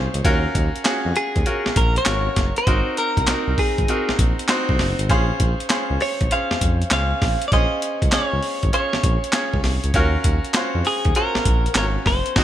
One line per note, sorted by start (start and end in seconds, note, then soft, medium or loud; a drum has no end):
0.00 0.27 C4 medium
0.00 0.25 C#4 medium
0.00 0.25 F4 medium
0.00 0.27 G#4 medium
0.00 0.27 C5 loud
0.14 0.22 C#2 loud
0.14 closed hi-hat medium
0.25 0.47 D#2 loud
0.25 0.83 C#4 loud
0.25 0.83 F4 medium
0.25 0.83 F#4 medium
0.25 0.83 A#4 loud
0.25 kick loud
0.25 closed hi-hat medium
0.55 0.69 D#2 loud
0.55 kick medium
0.55 closed hi-hat medium
0.76 closed hi-hat soft
0.84 1.43 C#4 medium
0.84 1.43 F4 medium
0.84 1.43 F#4 medium
0.84 1.43 G#4 loud
0.84 snare loud
0.84 clap medium
0.84 closed hi-hat medium
1.05 1.13 F2 loud
1.16 1.78 G#4 medium
1.16 closed hi-hat medium
1.36 1.43 D#2 medium
1.36 kick loud
1.36 closed hi-hat soft
1.46 2.04 C#4 medium
1.46 2.04 F4 medium
1.46 2.04 F#4 medium
1.46 2.05 A#4 medium
1.46 closed hi-hat medium
1.66 1.70 A#1 soft
1.66 snare medium
1.76 1.98 A#1 loud
1.76 1.97 A#4 medium
1.76 kick loud
1.76 closed hi-hat medium
1.96 2.54 C#5 loud
1.96 closed hi-hat soft
2.05 2.29 G#1 loud
2.05 2.65 C#4 medium
2.05 2.65 F4 medium
2.05 2.65 F#4 medium
2.05 2.65 A#4 medium
2.05 snare loud
2.05 clap medium
2.05 closed hi-hat medium
2.36 2.51 F#1 medium
2.36 kick medium
2.36 snare medium
2.36 closed hi-hat medium
2.56 2.98 C5 loud
2.56 closed hi-hat medium
2.67 2.82 G#1 loud
2.67 3.25 C4 medium
2.67 3.25 D#4 medium
2.67 3.26 F#4 medium
2.67 3.26 A#4 medium
2.67 kick loud
2.67 closed hi-hat medium
2.97 3.60 A#4 loud
2.97 closed hi-hat medium
3.17 3.25 C2 medium
3.17 kick loud
3.17 closed hi-hat soft
3.27 3.36 C2 medium
3.27 3.86 C4 medium
3.27 3.86 D#4 medium
3.27 3.86 F#4 medium
3.27 3.87 A#4 medium
3.27 snare loud
3.27 clap medium
3.27 closed hi-hat medium
3.48 3.55 C2 loud
3.58 4.15 G#4 medium
3.58 kick medium
3.58 open hi-hat medium
3.78 3.86 G#1 medium
3.78 kick medium
3.78 closed hi-hat soft
3.88 4.47 C4 medium
3.88 4.47 D#4 medium
3.88 4.47 F#4 medium
3.88 4.47 A#4 medium
3.88 closed hi-hat medium
4.09 4.13 A#1 soft
4.09 snare medium
4.19 4.33 A#1 medium
4.19 kick loud
4.19 closed hi-hat medium
4.39 closed hi-hat soft
4.48 5.07 C4 medium
4.48 5.07 D#4 medium
4.48 5.07 F#4 medium
4.48 5.08 C5 loud
4.48 snare loud
4.48 clap medium
4.48 closed hi-hat medium
4.69 4.76 C2 loud
4.69 kick loud
4.79 4.94 F#1 loud
4.79 snare medium
4.79 open hi-hat medium
4.99 5.11 G#1 loud
4.99 closed hi-hat medium
5.09 5.31 A#1 loud
5.09 5.68 C#4 loud
5.09 5.68 F4 medium
5.09 5.68 G#4 medium
5.09 5.68 C5 loud
5.09 kick loud
5.09 closed hi-hat medium
5.40 5.54 A#1 loud
5.40 kick medium
5.40 closed hi-hat medium
5.60 closed hi-hat soft
5.70 6.28 C#4 medium
5.70 6.29 F4 medium
5.70 6.29 G#4 medium
5.70 6.29 C5 loud
5.70 snare loud
5.70 clap medium
5.70 closed hi-hat medium
5.90 5.98 C#2 medium
6.00 6.32 C#5 medium
6.00 open hi-hat medium
6.21 6.28 A#1 medium
6.21 kick medium
6.21 closed hi-hat soft
6.31 6.89 C#4 medium
6.31 6.89 F4 medium
6.31 6.89 G#4 medium
6.31 6.90 C5 medium
6.31 6.88 F5 loud
6.31 closed hi-hat medium
6.51 6.55 F2 soft
6.51 snare medium
6.61 6.83 F2 medium
6.61 kick loud
6.61 closed hi-hat medium
6.82 closed hi-hat soft
6.91 7.13 C#2 medium
6.91 7.49 C#4 medium
6.91 7.50 F4 medium
6.91 7.50 G#4 medium
6.91 7.50 C5 medium
6.91 7.48 F5 loud
6.91 snare loud
6.91 clap loud
6.91 closed hi-hat medium
7.22 7.36 A#1 medium
7.22 kick medium
7.22 snare medium
7.22 open hi-hat medium
7.42 closed hi-hat medium
7.48 7.66 A#1 loud
7.48 7.52 D5 medium
7.48 closed hi-hat medium
7.52 8.10 C#4 medium
7.52 8.10 F4 medium
7.52 8.11 G#4 medium
7.52 8.11 C5 medium
7.52 8.13 D#5 medium
7.52 kick loud
7.82 closed hi-hat medium
8.02 8.10 C#2 medium
8.02 kick medium
8.02 closed hi-hat soft
8.12 8.20 C#2 medium
8.12 8.71 C#4 medium
8.12 8.71 F4 medium
8.12 8.71 G#4 medium
8.12 8.70 C#5 medium
8.12 8.71 C#5 medium
8.12 snare loud
8.12 clap medium
8.12 closed hi-hat medium
8.33 8.40 C#2 medium
8.43 open hi-hat medium
8.63 8.70 G#1 medium
8.63 kick medium
8.63 closed hi-hat soft
8.73 9.31 C#4 medium
8.73 9.31 F4 medium
8.73 9.31 G#4 medium
8.73 9.32 C#5 medium
8.73 9.61 C#5 medium
8.73 closed hi-hat medium
8.93 8.97 A#1 soft
8.93 snare medium
9.03 9.18 A#1 loud
9.03 kick loud
9.03 closed hi-hat medium
9.24 closed hi-hat soft
9.33 9.92 C#4 medium
9.33 9.92 F4 medium
9.33 9.92 G#4 medium
9.33 9.92 C#5 medium
9.33 snare loud
9.33 clap medium
9.33 closed hi-hat medium
9.54 9.61 C#2 medium
9.54 kick medium
9.64 9.79 C2 medium
9.64 snare medium
9.64 open hi-hat medium
9.84 9.92 C#2 medium
9.84 closed hi-hat medium
9.94 10.16 D#2 loud
9.94 10.53 C#4 loud
9.94 10.53 F4 medium
9.94 10.53 F#4 medium
9.94 10.53 A#4 loud
9.94 kick loud
9.94 closed hi-hat medium
10.24 10.39 D#2 loud
10.24 kick medium
10.24 closed hi-hat medium
10.44 closed hi-hat soft
10.54 11.13 C#4 medium
10.54 11.14 F4 medium
10.54 11.14 F#4 medium
10.54 11.14 C5 medium
10.54 snare loud
10.54 clap medium
10.54 closed hi-hat medium
10.75 10.82 F2 loud
10.85 11.16 G#4 medium
10.85 open hi-hat medium
11.05 11.13 D#2 medium
11.05 kick loud
11.05 closed hi-hat soft
11.15 11.74 C#4 medium
11.15 11.74 F4 medium
11.15 11.74 F#4 medium
11.15 11.73 A#4 loud
11.15 11.74 C5 medium
11.15 closed hi-hat medium
11.35 11.39 A#1 soft
11.35 snare medium
11.45 11.68 A#1 loud
11.45 kick loud
11.45 closed hi-hat medium
11.66 closed hi-hat soft
11.75 11.98 G#1 loud
11.75 12.34 C#4 medium
11.75 12.35 F4 medium
11.75 12.35 F#4 medium
11.75 11.86 A#4 loud
11.75 12.35 C#5 medium
11.75 snare loud
11.75 clap loud
11.75 closed hi-hat medium
12.06 12.21 F#1 loud
12.06 12.44 C5 loud
12.06 kick medium
12.06 snare medium
12.06 open hi-hat medium
12.26 closed hi-hat medium
12.36 12.44 G#1 loud
12.36 12.44 C4 loud
12.36 12.44 D#4 loud
12.36 12.44 F#4 loud
12.36 kick loud
12.36 snare loud
12.36 crash medium